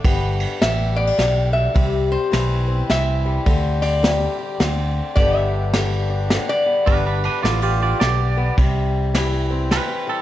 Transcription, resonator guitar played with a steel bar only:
0.62 E5
0.96 D5
1.53 E5
2.12 C5
2.90 E5
3.82 D5
5.15 D5
5.36 E5
6.49 D5

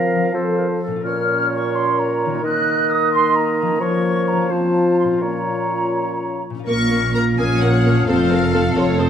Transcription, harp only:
Already playing: F3 C4 F4 A#4 C5
0.15 F3
0.20 C4
0.24 F4
0.29 A4
0.87 A#2
0.92 C#4
0.96 F4
1.00 A#4
2.26 D#3
2.30 A#3
2.35 D#4
2.39 A#4
3.62 F3
3.66 A#3
3.71 C#4
3.76 C#5
4.32 F3
4.37 C4
4.41 F4
4.46 C5
5.04 A#2
5.09 C#4
5.13 F4
5.18 A#4
6.50 A#2
6.55 C#4
6.59 F4
6.63 A#4
7.90 F3
7.95 C4
7.99 F4
8.04 A4

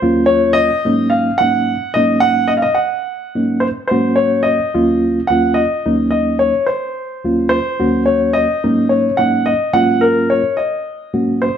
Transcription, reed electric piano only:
0.02 D#2 F#3 A#3 C#4 F4
0.85 G#2 F#3 A#3 C#4 D#4
1.41 G#2 F#3 A#3 C#4 D#4
1.96 G#2 F#3 A#3 C#4 D#4
3.35 G#2 F#3 A#3 C#4 D#4
3.91 G#2 F#3 A#3 C#4 F#4
4.74 D#2 F#3 A#3 C#4 F4
5.30 D#2 F#3 A#3 C#4 F4
5.86 D#2 F#3 A#3 C#4 D#4
7.25 D#2 F#3 A#3 C#4 F4
7.80 D#2 F#3 A#3 C#4 F#4
8.64 G#2 F#3 A#3 C#4 D#4
9.19 G#2 F#3 A#3 C#4 D#4
9.73 G#2 F#3 A#3 C#4 F4
11.14 G#2 F#3 A#3 C#4 F#4

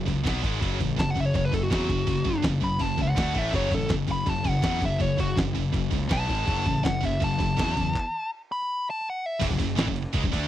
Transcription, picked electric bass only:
0.07 C#2
0.26 B1
0.43 G#1
0.62 F#1
0.80 A1
0.99 F#1
1.17 F#1
1.35 F#1
1.54 F#1
1.71 E2
1.90 F#1
2.08 F#1
2.26 F#1
2.44 F#1
2.62 F#1
2.81 F#1
2.98 C#2
3.18 D2
3.35 A1
3.54 F#1
3.73 A1
3.91 F#1
4.09 F#1
4.27 F#1
4.46 F#1
4.63 E2
4.83 F#1
5.01 F#1
5.20 F#1
5.38 F#1
5.56 F#1
5.74 F#1
5.93 C#2
6.11 B1
6.30 G#1
6.47 F#1
6.66 A1
6.85 F#1
7.04 F#1
7.21 F#1
7.41 F#1
7.59 E2
7.77 E2
9.42 F#1
9.50 F#1
9.59 F#1
9.78 A1
9.87 F#1
10.14 C#2
10.24 F#1
10.33 D2

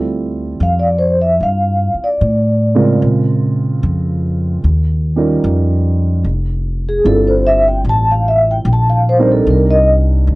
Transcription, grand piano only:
Already playing: G3 C4 E4 F4 A4
2.75 C#3 G#3 C4 F4 A#4
5.16 G3 C#4 D#4 F4 A#4
7.04 G3 C4 E4 F4 A4
9.18 G3 C4 D4 D#4 A#4

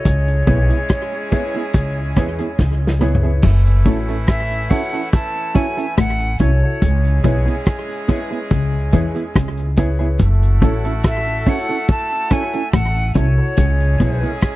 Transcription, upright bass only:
0.06 C#2
0.48 B1
1.75 C#2
2.17 E2
2.59 C#2
3.44 F#1
3.86 A1
5.98 A1
6.41 C2
6.83 C#2
7.25 B1
8.52 C#2
8.94 E2
9.36 C#2
10.20 F#1
10.62 A1
12.74 A1
13.16 C2
13.58 C#2
14.01 B1

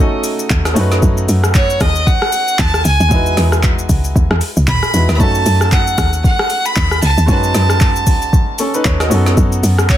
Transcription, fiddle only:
1.55 C#5
1.81 D#5
2.07 F#5
2.59 A5
2.85 G#5
4.68 B5
5.14 B5
5.20 A5
5.73 F#5
6.25 F#5
6.66 B5
7.03 A5
7.29 A5
9.90 C#5

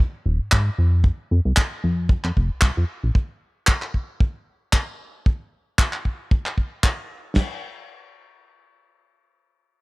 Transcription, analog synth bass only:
0.26 D#1
0.40 G#2
0.53 G#2
0.78 F2
1.31 F2
1.45 C2
1.84 F2
2.24 F2
2.37 F1
2.51 C2
2.62 C2
2.77 F2
3.03 A#1

